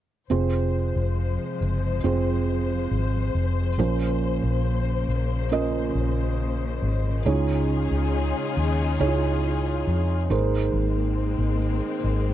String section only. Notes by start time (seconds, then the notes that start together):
0.31 F3 G#3 C5
3.79 C#3 A#3
7.26 C#4 D#4 F4 G#4
10.31 G#3 A#3 C4